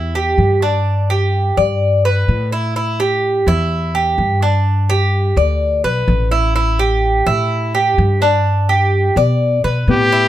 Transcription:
Already playing: upright bass E2, cuban tres E4
0.15 cuban tres G4
0.38 upright bass G2
0.62 cuban tres D4
1.10 cuban tres G4
1.57 upright bass G2, cuban tres D5
2.05 cuban tres B4
2.28 upright bass A2
2.52 cuban tres E4
2.76 cuban tres E4
3.00 cuban tres G4
3.47 upright bass E2, cuban tres E4
3.95 cuban tres G4
4.18 upright bass G2
4.42 cuban tres D4
4.90 cuban tres G4
5.36 upright bass D2, cuban tres D5
5.84 upright bass B1, cuban tres B4
6.08 upright bass A1
6.31 cuban tres E4
6.56 cuban tres E4
6.79 cuban tres G4
7.26 upright bass A2, cuban tres E4
7.75 cuban tres G4
7.98 upright bass G2
8.22 cuban tres D4
8.69 cuban tres G4
9.16 upright bass B2, cuban tres D5
9.64 upright bass B2, cuban tres B4
9.87 upright bass A2, nylon-string guitar B3, trumpet G4
10.12 cuban tres E4

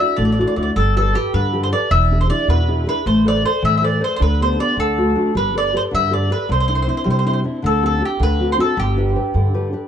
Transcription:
0.00 nylon-string guitar D4 E4 F#4, mandolin E5
0.16 upright bass A1, nylon-string guitar A3, mandolin D5
0.25 mandolin D5
0.32 mandolin D5
0.38 nylon-string guitar D4 E4 F#4, mandolin D5
0.47 mandolin D5
0.56 upright bass D2, nylon-string guitar D4 E4 F#4, mandolin D5
0.63 mandolin D5
0.76 upright bass G1, nylon-string guitar G3, mandolin A4
0.96 nylon-string guitar G4 A4 B4, mandolin A4
1.14 nylon-string guitar G4 A4 B4, mandolin G4
1.34 upright bass G2, nylon-string guitar D3, mandolin B4
1.53 nylon-string guitar G4 A4 B4
1.63 mandolin C5
1.72 nylon-string guitar G4 A4 B4, mandolin D5
1.91 upright bass E1, nylon-string guitar E3, mandolin E5
2.11 nylon-string guitar D4 E4 G#4
2.21 mandolin C5
2.30 nylon-string guitar D4 E4 G#4, mandolin D5
2.48 upright bass E2, nylon-string guitar B2, mandolin B4
2.68 nylon-string guitar D4 E4 G#4
2.86 nylon-string guitar D4 E4 G#4, mandolin B4
3.06 upright bass A1, nylon-string guitar A3, mandolin C5
3.25 nylon-string guitar A4 B4 C5, mandolin D5
3.44 nylon-string guitar A4 B4 C5, mandolin C5
3.62 upright bass A2, nylon-string guitar E3, mandolin E5
3.77 mandolin E5
3.82 nylon-string guitar A4 B4 C5, mandolin D5
4.00 nylon-string guitar A4 B4 C5, mandolin C5
4.16 nylon-string guitar D3, mandolin C5
4.21 upright bass D2, mandolin B4
4.40 nylon-string guitar B3 D4 G4, mandolin C5
4.59 nylon-string guitar B3 D4 G4, mandolin D5
4.77 upright bass D2, nylon-string guitar D3, mandolin A4
4.97 nylon-string guitar A3 D4 F#4
5.15 nylon-string guitar A3 D4 F#4
5.35 upright bass G1, nylon-string guitar G3, mandolin B4
5.54 nylon-string guitar G4 A4 B4, mandolin D5
5.73 nylon-string guitar G4 A4 B4, mandolin C5
5.91 upright bass G2, nylon-string guitar D3, mandolin E5
6.11 nylon-string guitar G4 A4 B4, mandolin D5
6.30 nylon-string guitar G4 A4 B4, mandolin B4
6.49 upright bass C2, nylon-string guitar C3, mandolin C5
6.60 mandolin C5
6.68 nylon-string guitar C4 D4 E4, mandolin C5
6.75 mandolin C5
6.82 mandolin C5
6.87 nylon-string guitar C4 D4 E4, mandolin C5
6.97 mandolin C5
7.04 upright bass C3, nylon-string guitar G3, mandolin C5
7.10 mandolin C5
7.19 mandolin C5
7.26 nylon-string guitar C4 D4 E4, mandolin C5
7.33 mandolin C5
7.44 nylon-string guitar C4 D4 E4
7.62 upright bass D2, nylon-string guitar D3, mandolin A4
7.82 nylon-string guitar C4 D4 G4, mandolin A4
8.01 nylon-string guitar C4 D4 G4
8.05 mandolin G4
8.20 upright bass D2, nylon-string guitar D3, mandolin B4
8.39 nylon-string guitar C4 D4 F#4
8.52 mandolin C5
8.57 nylon-string guitar C4 D4 F#4, mandolin A4
8.77 upright bass G1, nylon-string guitar G3, mandolin G4
8.97 nylon-string guitar D4 G4 B4
9.15 nylon-string guitar D4 G4 B4
9.34 upright bass G2, nylon-string guitar D3
9.54 nylon-string guitar D4 G4 B4
9.73 nylon-string guitar D4 G4 B4

